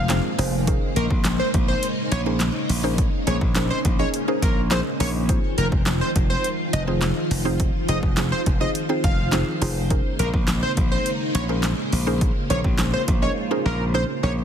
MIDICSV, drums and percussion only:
0, 0, Header, 1, 2, 480
1, 0, Start_track
1, 0, Tempo, 576923
1, 562, Time_signature, 4, 2, 24, 8
1, 12016, End_track
2, 0, Start_track
2, 0, Title_t, "Drums"
2, 77, Note_on_c, 9, 38, 82
2, 81, Note_on_c, 9, 39, 101
2, 82, Note_on_c, 9, 42, 95
2, 160, Note_off_c, 9, 38, 0
2, 164, Note_off_c, 9, 39, 0
2, 165, Note_off_c, 9, 42, 0
2, 322, Note_on_c, 9, 46, 90
2, 405, Note_off_c, 9, 46, 0
2, 561, Note_on_c, 9, 42, 92
2, 562, Note_on_c, 9, 36, 116
2, 644, Note_off_c, 9, 42, 0
2, 645, Note_off_c, 9, 36, 0
2, 801, Note_on_c, 9, 42, 86
2, 884, Note_off_c, 9, 42, 0
2, 920, Note_on_c, 9, 36, 98
2, 1003, Note_off_c, 9, 36, 0
2, 1036, Note_on_c, 9, 38, 101
2, 1040, Note_on_c, 9, 39, 123
2, 1041, Note_on_c, 9, 42, 93
2, 1120, Note_off_c, 9, 38, 0
2, 1123, Note_off_c, 9, 39, 0
2, 1124, Note_off_c, 9, 42, 0
2, 1281, Note_on_c, 9, 42, 79
2, 1283, Note_on_c, 9, 36, 105
2, 1365, Note_off_c, 9, 42, 0
2, 1367, Note_off_c, 9, 36, 0
2, 1520, Note_on_c, 9, 42, 88
2, 1604, Note_off_c, 9, 42, 0
2, 1761, Note_on_c, 9, 42, 86
2, 1844, Note_off_c, 9, 42, 0
2, 1997, Note_on_c, 9, 38, 86
2, 2001, Note_on_c, 9, 39, 106
2, 2002, Note_on_c, 9, 42, 95
2, 2080, Note_off_c, 9, 38, 0
2, 2084, Note_off_c, 9, 39, 0
2, 2085, Note_off_c, 9, 42, 0
2, 2242, Note_on_c, 9, 46, 94
2, 2325, Note_off_c, 9, 46, 0
2, 2481, Note_on_c, 9, 42, 93
2, 2482, Note_on_c, 9, 36, 122
2, 2564, Note_off_c, 9, 42, 0
2, 2565, Note_off_c, 9, 36, 0
2, 2721, Note_on_c, 9, 42, 86
2, 2804, Note_off_c, 9, 42, 0
2, 2840, Note_on_c, 9, 36, 97
2, 2923, Note_off_c, 9, 36, 0
2, 2957, Note_on_c, 9, 38, 100
2, 2961, Note_on_c, 9, 39, 127
2, 2962, Note_on_c, 9, 42, 92
2, 3040, Note_off_c, 9, 38, 0
2, 3044, Note_off_c, 9, 39, 0
2, 3045, Note_off_c, 9, 42, 0
2, 3202, Note_on_c, 9, 42, 80
2, 3204, Note_on_c, 9, 36, 104
2, 3285, Note_off_c, 9, 42, 0
2, 3287, Note_off_c, 9, 36, 0
2, 3442, Note_on_c, 9, 42, 91
2, 3525, Note_off_c, 9, 42, 0
2, 3681, Note_on_c, 9, 36, 105
2, 3682, Note_on_c, 9, 42, 82
2, 3764, Note_off_c, 9, 36, 0
2, 3765, Note_off_c, 9, 42, 0
2, 3918, Note_on_c, 9, 38, 86
2, 3921, Note_on_c, 9, 39, 105
2, 3922, Note_on_c, 9, 42, 95
2, 4001, Note_off_c, 9, 38, 0
2, 4004, Note_off_c, 9, 39, 0
2, 4005, Note_off_c, 9, 42, 0
2, 4162, Note_on_c, 9, 46, 92
2, 4245, Note_off_c, 9, 46, 0
2, 4402, Note_on_c, 9, 36, 117
2, 4402, Note_on_c, 9, 42, 95
2, 4485, Note_off_c, 9, 36, 0
2, 4485, Note_off_c, 9, 42, 0
2, 4641, Note_on_c, 9, 42, 82
2, 4724, Note_off_c, 9, 42, 0
2, 4760, Note_on_c, 9, 36, 95
2, 4843, Note_off_c, 9, 36, 0
2, 4877, Note_on_c, 9, 38, 97
2, 4880, Note_on_c, 9, 39, 123
2, 4881, Note_on_c, 9, 42, 98
2, 4960, Note_off_c, 9, 38, 0
2, 4964, Note_off_c, 9, 39, 0
2, 4965, Note_off_c, 9, 42, 0
2, 5122, Note_on_c, 9, 42, 84
2, 5124, Note_on_c, 9, 36, 103
2, 5205, Note_off_c, 9, 42, 0
2, 5207, Note_off_c, 9, 36, 0
2, 5361, Note_on_c, 9, 42, 92
2, 5444, Note_off_c, 9, 42, 0
2, 5602, Note_on_c, 9, 42, 85
2, 5685, Note_off_c, 9, 42, 0
2, 5837, Note_on_c, 9, 38, 80
2, 5841, Note_on_c, 9, 39, 102
2, 5842, Note_on_c, 9, 42, 95
2, 5921, Note_off_c, 9, 38, 0
2, 5924, Note_off_c, 9, 39, 0
2, 5925, Note_off_c, 9, 42, 0
2, 6082, Note_on_c, 9, 46, 88
2, 6165, Note_off_c, 9, 46, 0
2, 6321, Note_on_c, 9, 42, 95
2, 6322, Note_on_c, 9, 36, 117
2, 6404, Note_off_c, 9, 42, 0
2, 6405, Note_off_c, 9, 36, 0
2, 6560, Note_on_c, 9, 42, 83
2, 6644, Note_off_c, 9, 42, 0
2, 6680, Note_on_c, 9, 36, 96
2, 6763, Note_off_c, 9, 36, 0
2, 6797, Note_on_c, 9, 38, 102
2, 6800, Note_on_c, 9, 39, 124
2, 6801, Note_on_c, 9, 42, 93
2, 6880, Note_off_c, 9, 38, 0
2, 6883, Note_off_c, 9, 39, 0
2, 6884, Note_off_c, 9, 42, 0
2, 7042, Note_on_c, 9, 42, 83
2, 7043, Note_on_c, 9, 36, 100
2, 7125, Note_off_c, 9, 42, 0
2, 7126, Note_off_c, 9, 36, 0
2, 7280, Note_on_c, 9, 42, 89
2, 7363, Note_off_c, 9, 42, 0
2, 7520, Note_on_c, 9, 42, 83
2, 7521, Note_on_c, 9, 36, 109
2, 7604, Note_off_c, 9, 36, 0
2, 7604, Note_off_c, 9, 42, 0
2, 7757, Note_on_c, 9, 38, 85
2, 7760, Note_on_c, 9, 39, 104
2, 7761, Note_on_c, 9, 42, 101
2, 7840, Note_off_c, 9, 38, 0
2, 7843, Note_off_c, 9, 39, 0
2, 7844, Note_off_c, 9, 42, 0
2, 8001, Note_on_c, 9, 46, 90
2, 8084, Note_off_c, 9, 46, 0
2, 8241, Note_on_c, 9, 36, 119
2, 8241, Note_on_c, 9, 42, 90
2, 8324, Note_off_c, 9, 42, 0
2, 8325, Note_off_c, 9, 36, 0
2, 8481, Note_on_c, 9, 42, 88
2, 8564, Note_off_c, 9, 42, 0
2, 8600, Note_on_c, 9, 36, 93
2, 8683, Note_off_c, 9, 36, 0
2, 8716, Note_on_c, 9, 38, 99
2, 8720, Note_on_c, 9, 39, 122
2, 8721, Note_on_c, 9, 42, 94
2, 8799, Note_off_c, 9, 38, 0
2, 8803, Note_off_c, 9, 39, 0
2, 8804, Note_off_c, 9, 42, 0
2, 8961, Note_on_c, 9, 42, 83
2, 8963, Note_on_c, 9, 36, 109
2, 9045, Note_off_c, 9, 42, 0
2, 9047, Note_off_c, 9, 36, 0
2, 9201, Note_on_c, 9, 42, 89
2, 9284, Note_off_c, 9, 42, 0
2, 9441, Note_on_c, 9, 42, 84
2, 9524, Note_off_c, 9, 42, 0
2, 9677, Note_on_c, 9, 38, 87
2, 9680, Note_on_c, 9, 39, 99
2, 9681, Note_on_c, 9, 42, 95
2, 9760, Note_off_c, 9, 38, 0
2, 9764, Note_off_c, 9, 39, 0
2, 9765, Note_off_c, 9, 42, 0
2, 9922, Note_on_c, 9, 46, 93
2, 10005, Note_off_c, 9, 46, 0
2, 10161, Note_on_c, 9, 42, 89
2, 10162, Note_on_c, 9, 36, 118
2, 10244, Note_off_c, 9, 42, 0
2, 10245, Note_off_c, 9, 36, 0
2, 10401, Note_on_c, 9, 42, 83
2, 10484, Note_off_c, 9, 42, 0
2, 10520, Note_on_c, 9, 36, 94
2, 10604, Note_off_c, 9, 36, 0
2, 10637, Note_on_c, 9, 38, 100
2, 10640, Note_on_c, 9, 39, 127
2, 10641, Note_on_c, 9, 42, 96
2, 10720, Note_off_c, 9, 38, 0
2, 10723, Note_off_c, 9, 39, 0
2, 10724, Note_off_c, 9, 42, 0
2, 10882, Note_on_c, 9, 42, 82
2, 10884, Note_on_c, 9, 36, 102
2, 10965, Note_off_c, 9, 42, 0
2, 10967, Note_off_c, 9, 36, 0
2, 12016, End_track
0, 0, End_of_file